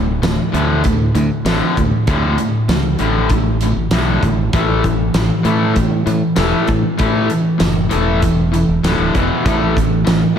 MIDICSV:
0, 0, Header, 1, 4, 480
1, 0, Start_track
1, 0, Tempo, 615385
1, 1615, Time_signature, 4, 2, 24, 8
1, 8101, End_track
2, 0, Start_track
2, 0, Title_t, "Distorted electric guitar"
2, 0, Program_c, 0, 30
2, 0, Note_on_c, 0, 38, 70
2, 0, Note_on_c, 0, 45, 74
2, 156, Note_off_c, 0, 38, 0
2, 157, Note_off_c, 0, 45, 0
2, 175, Note_on_c, 0, 38, 68
2, 181, Note_on_c, 0, 45, 82
2, 391, Note_off_c, 0, 38, 0
2, 394, Note_off_c, 0, 45, 0
2, 412, Note_on_c, 0, 38, 82
2, 419, Note_on_c, 0, 50, 91
2, 420, Note_on_c, 0, 45, 96
2, 639, Note_off_c, 0, 38, 0
2, 643, Note_off_c, 0, 45, 0
2, 643, Note_off_c, 0, 50, 0
2, 650, Note_on_c, 0, 38, 65
2, 655, Note_on_c, 0, 45, 77
2, 869, Note_off_c, 0, 38, 0
2, 871, Note_off_c, 0, 45, 0
2, 896, Note_on_c, 0, 38, 75
2, 900, Note_on_c, 0, 45, 66
2, 1112, Note_off_c, 0, 38, 0
2, 1114, Note_off_c, 0, 45, 0
2, 1143, Note_on_c, 0, 38, 82
2, 1150, Note_on_c, 0, 45, 86
2, 1150, Note_on_c, 0, 50, 86
2, 1365, Note_off_c, 0, 38, 0
2, 1368, Note_off_c, 0, 45, 0
2, 1368, Note_off_c, 0, 50, 0
2, 1384, Note_on_c, 0, 45, 60
2, 1385, Note_on_c, 0, 38, 60
2, 1596, Note_off_c, 0, 38, 0
2, 1596, Note_off_c, 0, 45, 0
2, 1616, Note_on_c, 0, 38, 84
2, 1623, Note_on_c, 0, 50, 92
2, 1624, Note_on_c, 0, 45, 85
2, 1841, Note_off_c, 0, 38, 0
2, 1845, Note_off_c, 0, 45, 0
2, 1845, Note_off_c, 0, 50, 0
2, 1861, Note_on_c, 0, 45, 72
2, 1865, Note_on_c, 0, 38, 62
2, 2074, Note_off_c, 0, 45, 0
2, 2076, Note_off_c, 0, 38, 0
2, 2092, Note_on_c, 0, 38, 74
2, 2098, Note_on_c, 0, 45, 82
2, 2310, Note_off_c, 0, 38, 0
2, 2313, Note_off_c, 0, 45, 0
2, 2336, Note_on_c, 0, 38, 85
2, 2336, Note_on_c, 0, 45, 93
2, 2337, Note_on_c, 0, 50, 85
2, 2561, Note_off_c, 0, 45, 0
2, 2562, Note_off_c, 0, 38, 0
2, 2562, Note_off_c, 0, 50, 0
2, 2577, Note_on_c, 0, 38, 65
2, 2582, Note_on_c, 0, 45, 79
2, 2792, Note_off_c, 0, 38, 0
2, 2795, Note_off_c, 0, 45, 0
2, 2827, Note_on_c, 0, 38, 70
2, 2828, Note_on_c, 0, 45, 72
2, 3037, Note_off_c, 0, 38, 0
2, 3038, Note_off_c, 0, 45, 0
2, 3058, Note_on_c, 0, 38, 74
2, 3060, Note_on_c, 0, 45, 92
2, 3062, Note_on_c, 0, 50, 87
2, 3281, Note_off_c, 0, 38, 0
2, 3284, Note_off_c, 0, 45, 0
2, 3284, Note_off_c, 0, 50, 0
2, 3290, Note_on_c, 0, 38, 55
2, 3295, Note_on_c, 0, 45, 64
2, 3509, Note_off_c, 0, 38, 0
2, 3511, Note_off_c, 0, 45, 0
2, 3539, Note_on_c, 0, 45, 75
2, 3544, Note_on_c, 0, 52, 97
2, 3544, Note_on_c, 0, 57, 89
2, 3763, Note_off_c, 0, 45, 0
2, 3765, Note_off_c, 0, 52, 0
2, 3766, Note_off_c, 0, 57, 0
2, 3776, Note_on_c, 0, 52, 71
2, 3777, Note_on_c, 0, 45, 60
2, 3992, Note_off_c, 0, 52, 0
2, 3993, Note_off_c, 0, 45, 0
2, 4011, Note_on_c, 0, 45, 68
2, 4016, Note_on_c, 0, 52, 78
2, 4229, Note_off_c, 0, 45, 0
2, 4232, Note_off_c, 0, 52, 0
2, 4255, Note_on_c, 0, 45, 78
2, 4257, Note_on_c, 0, 52, 84
2, 4259, Note_on_c, 0, 57, 92
2, 4481, Note_off_c, 0, 45, 0
2, 4482, Note_off_c, 0, 52, 0
2, 4484, Note_off_c, 0, 57, 0
2, 4493, Note_on_c, 0, 45, 57
2, 4493, Note_on_c, 0, 52, 69
2, 4711, Note_off_c, 0, 45, 0
2, 4711, Note_off_c, 0, 52, 0
2, 4736, Note_on_c, 0, 45, 73
2, 4741, Note_on_c, 0, 52, 68
2, 4952, Note_off_c, 0, 45, 0
2, 4955, Note_off_c, 0, 52, 0
2, 4977, Note_on_c, 0, 45, 87
2, 4982, Note_on_c, 0, 57, 89
2, 4984, Note_on_c, 0, 52, 93
2, 5203, Note_off_c, 0, 45, 0
2, 5205, Note_off_c, 0, 57, 0
2, 5206, Note_off_c, 0, 52, 0
2, 5219, Note_on_c, 0, 45, 57
2, 5222, Note_on_c, 0, 52, 62
2, 5434, Note_off_c, 0, 45, 0
2, 5435, Note_off_c, 0, 52, 0
2, 5450, Note_on_c, 0, 45, 87
2, 5456, Note_on_c, 0, 52, 87
2, 5459, Note_on_c, 0, 57, 90
2, 5679, Note_off_c, 0, 45, 0
2, 5682, Note_off_c, 0, 52, 0
2, 5684, Note_off_c, 0, 57, 0
2, 5693, Note_on_c, 0, 45, 58
2, 5694, Note_on_c, 0, 52, 73
2, 5911, Note_off_c, 0, 45, 0
2, 5912, Note_off_c, 0, 52, 0
2, 5935, Note_on_c, 0, 52, 77
2, 5936, Note_on_c, 0, 45, 66
2, 6152, Note_off_c, 0, 52, 0
2, 6153, Note_off_c, 0, 45, 0
2, 6166, Note_on_c, 0, 45, 90
2, 6173, Note_on_c, 0, 52, 82
2, 6175, Note_on_c, 0, 57, 85
2, 6397, Note_off_c, 0, 45, 0
2, 6401, Note_off_c, 0, 52, 0
2, 6402, Note_off_c, 0, 57, 0
2, 6415, Note_on_c, 0, 45, 66
2, 6415, Note_on_c, 0, 52, 72
2, 6632, Note_off_c, 0, 45, 0
2, 6632, Note_off_c, 0, 52, 0
2, 6656, Note_on_c, 0, 45, 71
2, 6660, Note_on_c, 0, 52, 70
2, 6873, Note_off_c, 0, 45, 0
2, 6875, Note_off_c, 0, 52, 0
2, 6902, Note_on_c, 0, 38, 80
2, 6907, Note_on_c, 0, 45, 93
2, 6910, Note_on_c, 0, 50, 105
2, 7126, Note_off_c, 0, 38, 0
2, 7128, Note_off_c, 0, 45, 0
2, 7130, Note_off_c, 0, 50, 0
2, 7136, Note_on_c, 0, 40, 69
2, 7140, Note_on_c, 0, 47, 80
2, 7143, Note_on_c, 0, 52, 78
2, 7363, Note_off_c, 0, 40, 0
2, 7365, Note_off_c, 0, 47, 0
2, 7366, Note_off_c, 0, 52, 0
2, 7376, Note_on_c, 0, 52, 90
2, 7377, Note_on_c, 0, 45, 89
2, 7379, Note_on_c, 0, 57, 104
2, 7599, Note_off_c, 0, 45, 0
2, 7603, Note_off_c, 0, 52, 0
2, 7604, Note_off_c, 0, 57, 0
2, 7608, Note_on_c, 0, 45, 68
2, 7612, Note_on_c, 0, 52, 70
2, 7829, Note_off_c, 0, 45, 0
2, 7831, Note_off_c, 0, 52, 0
2, 7851, Note_on_c, 0, 45, 70
2, 7856, Note_on_c, 0, 52, 80
2, 8069, Note_off_c, 0, 45, 0
2, 8073, Note_off_c, 0, 52, 0
2, 8101, End_track
3, 0, Start_track
3, 0, Title_t, "Fingered electric bass"
3, 0, Program_c, 1, 33
3, 0, Note_on_c, 1, 26, 89
3, 149, Note_off_c, 1, 26, 0
3, 173, Note_on_c, 1, 26, 100
3, 287, Note_off_c, 1, 26, 0
3, 419, Note_on_c, 1, 38, 96
3, 867, Note_off_c, 1, 38, 0
3, 897, Note_on_c, 1, 38, 101
3, 1009, Note_off_c, 1, 38, 0
3, 1131, Note_on_c, 1, 33, 85
3, 1246, Note_off_c, 1, 33, 0
3, 1385, Note_on_c, 1, 38, 79
3, 1493, Note_off_c, 1, 38, 0
3, 1618, Note_on_c, 1, 38, 81
3, 1841, Note_off_c, 1, 38, 0
3, 2095, Note_on_c, 1, 37, 86
3, 2320, Note_off_c, 1, 37, 0
3, 2339, Note_on_c, 1, 33, 95
3, 2906, Note_off_c, 1, 33, 0
3, 2937, Note_on_c, 1, 33, 75
3, 3049, Note_off_c, 1, 33, 0
3, 3056, Note_on_c, 1, 35, 78
3, 3272, Note_off_c, 1, 35, 0
3, 3295, Note_on_c, 1, 33, 78
3, 3512, Note_off_c, 1, 33, 0
3, 3535, Note_on_c, 1, 33, 83
3, 3985, Note_off_c, 1, 33, 0
3, 4011, Note_on_c, 1, 33, 92
3, 4126, Note_off_c, 1, 33, 0
3, 4249, Note_on_c, 1, 45, 94
3, 4702, Note_off_c, 1, 45, 0
3, 4731, Note_on_c, 1, 45, 89
3, 4846, Note_off_c, 1, 45, 0
3, 4974, Note_on_c, 1, 28, 96
3, 5088, Note_off_c, 1, 28, 0
3, 5210, Note_on_c, 1, 45, 77
3, 5326, Note_off_c, 1, 45, 0
3, 5459, Note_on_c, 1, 45, 84
3, 5683, Note_off_c, 1, 45, 0
3, 5934, Note_on_c, 1, 30, 93
3, 6160, Note_off_c, 1, 30, 0
3, 6186, Note_on_c, 1, 28, 91
3, 6751, Note_off_c, 1, 28, 0
3, 6773, Note_on_c, 1, 28, 80
3, 6888, Note_off_c, 1, 28, 0
3, 6892, Note_on_c, 1, 26, 100
3, 7007, Note_off_c, 1, 26, 0
3, 7013, Note_on_c, 1, 26, 81
3, 7128, Note_off_c, 1, 26, 0
3, 7137, Note_on_c, 1, 28, 84
3, 7250, Note_off_c, 1, 28, 0
3, 7374, Note_on_c, 1, 33, 97
3, 7825, Note_off_c, 1, 33, 0
3, 7857, Note_on_c, 1, 33, 107
3, 7970, Note_off_c, 1, 33, 0
3, 8101, End_track
4, 0, Start_track
4, 0, Title_t, "Drums"
4, 181, Note_on_c, 9, 42, 64
4, 181, Note_on_c, 9, 54, 100
4, 183, Note_on_c, 9, 38, 103
4, 259, Note_off_c, 9, 42, 0
4, 259, Note_off_c, 9, 54, 0
4, 261, Note_off_c, 9, 38, 0
4, 425, Note_on_c, 9, 42, 56
4, 503, Note_off_c, 9, 42, 0
4, 654, Note_on_c, 9, 42, 80
4, 663, Note_on_c, 9, 36, 76
4, 732, Note_off_c, 9, 42, 0
4, 741, Note_off_c, 9, 36, 0
4, 899, Note_on_c, 9, 42, 66
4, 977, Note_off_c, 9, 42, 0
4, 1137, Note_on_c, 9, 42, 83
4, 1137, Note_on_c, 9, 54, 106
4, 1139, Note_on_c, 9, 38, 105
4, 1215, Note_off_c, 9, 42, 0
4, 1215, Note_off_c, 9, 54, 0
4, 1217, Note_off_c, 9, 38, 0
4, 1382, Note_on_c, 9, 36, 73
4, 1383, Note_on_c, 9, 42, 54
4, 1460, Note_off_c, 9, 36, 0
4, 1461, Note_off_c, 9, 42, 0
4, 1617, Note_on_c, 9, 42, 82
4, 1620, Note_on_c, 9, 36, 109
4, 1695, Note_off_c, 9, 42, 0
4, 1698, Note_off_c, 9, 36, 0
4, 1857, Note_on_c, 9, 42, 62
4, 1935, Note_off_c, 9, 42, 0
4, 2098, Note_on_c, 9, 42, 76
4, 2098, Note_on_c, 9, 54, 101
4, 2100, Note_on_c, 9, 38, 101
4, 2176, Note_off_c, 9, 42, 0
4, 2176, Note_off_c, 9, 54, 0
4, 2178, Note_off_c, 9, 38, 0
4, 2330, Note_on_c, 9, 42, 58
4, 2408, Note_off_c, 9, 42, 0
4, 2571, Note_on_c, 9, 42, 81
4, 2576, Note_on_c, 9, 36, 84
4, 2649, Note_off_c, 9, 42, 0
4, 2654, Note_off_c, 9, 36, 0
4, 2814, Note_on_c, 9, 42, 71
4, 2892, Note_off_c, 9, 42, 0
4, 3049, Note_on_c, 9, 42, 82
4, 3049, Note_on_c, 9, 54, 108
4, 3051, Note_on_c, 9, 38, 104
4, 3127, Note_off_c, 9, 42, 0
4, 3127, Note_off_c, 9, 54, 0
4, 3129, Note_off_c, 9, 38, 0
4, 3296, Note_on_c, 9, 36, 76
4, 3299, Note_on_c, 9, 42, 58
4, 3374, Note_off_c, 9, 36, 0
4, 3377, Note_off_c, 9, 42, 0
4, 3534, Note_on_c, 9, 42, 85
4, 3535, Note_on_c, 9, 36, 109
4, 3612, Note_off_c, 9, 42, 0
4, 3613, Note_off_c, 9, 36, 0
4, 3776, Note_on_c, 9, 42, 52
4, 3777, Note_on_c, 9, 36, 67
4, 3854, Note_off_c, 9, 42, 0
4, 3855, Note_off_c, 9, 36, 0
4, 4010, Note_on_c, 9, 42, 73
4, 4010, Note_on_c, 9, 54, 109
4, 4013, Note_on_c, 9, 38, 109
4, 4088, Note_off_c, 9, 42, 0
4, 4088, Note_off_c, 9, 54, 0
4, 4091, Note_off_c, 9, 38, 0
4, 4250, Note_on_c, 9, 42, 55
4, 4328, Note_off_c, 9, 42, 0
4, 4491, Note_on_c, 9, 42, 76
4, 4495, Note_on_c, 9, 36, 85
4, 4569, Note_off_c, 9, 42, 0
4, 4573, Note_off_c, 9, 36, 0
4, 4733, Note_on_c, 9, 42, 60
4, 4811, Note_off_c, 9, 42, 0
4, 4962, Note_on_c, 9, 42, 76
4, 4962, Note_on_c, 9, 54, 106
4, 4965, Note_on_c, 9, 38, 97
4, 5040, Note_off_c, 9, 42, 0
4, 5040, Note_off_c, 9, 54, 0
4, 5043, Note_off_c, 9, 38, 0
4, 5206, Note_on_c, 9, 42, 54
4, 5215, Note_on_c, 9, 36, 69
4, 5284, Note_off_c, 9, 42, 0
4, 5293, Note_off_c, 9, 36, 0
4, 5450, Note_on_c, 9, 42, 76
4, 5457, Note_on_c, 9, 36, 107
4, 5528, Note_off_c, 9, 42, 0
4, 5535, Note_off_c, 9, 36, 0
4, 5692, Note_on_c, 9, 42, 60
4, 5770, Note_off_c, 9, 42, 0
4, 5927, Note_on_c, 9, 42, 75
4, 5927, Note_on_c, 9, 54, 97
4, 5929, Note_on_c, 9, 38, 102
4, 6005, Note_off_c, 9, 42, 0
4, 6005, Note_off_c, 9, 54, 0
4, 6007, Note_off_c, 9, 38, 0
4, 6169, Note_on_c, 9, 42, 60
4, 6247, Note_off_c, 9, 42, 0
4, 6414, Note_on_c, 9, 42, 88
4, 6416, Note_on_c, 9, 36, 75
4, 6492, Note_off_c, 9, 42, 0
4, 6494, Note_off_c, 9, 36, 0
4, 6659, Note_on_c, 9, 42, 65
4, 6737, Note_off_c, 9, 42, 0
4, 6898, Note_on_c, 9, 42, 93
4, 6898, Note_on_c, 9, 54, 106
4, 6900, Note_on_c, 9, 38, 106
4, 6976, Note_off_c, 9, 42, 0
4, 6976, Note_off_c, 9, 54, 0
4, 6978, Note_off_c, 9, 38, 0
4, 7135, Note_on_c, 9, 42, 63
4, 7137, Note_on_c, 9, 36, 79
4, 7213, Note_off_c, 9, 42, 0
4, 7215, Note_off_c, 9, 36, 0
4, 7377, Note_on_c, 9, 36, 106
4, 7378, Note_on_c, 9, 42, 84
4, 7455, Note_off_c, 9, 36, 0
4, 7456, Note_off_c, 9, 42, 0
4, 7618, Note_on_c, 9, 36, 75
4, 7626, Note_on_c, 9, 42, 64
4, 7696, Note_off_c, 9, 36, 0
4, 7704, Note_off_c, 9, 42, 0
4, 7853, Note_on_c, 9, 42, 78
4, 7853, Note_on_c, 9, 54, 98
4, 7855, Note_on_c, 9, 38, 103
4, 7931, Note_off_c, 9, 42, 0
4, 7931, Note_off_c, 9, 54, 0
4, 7933, Note_off_c, 9, 38, 0
4, 8101, End_track
0, 0, End_of_file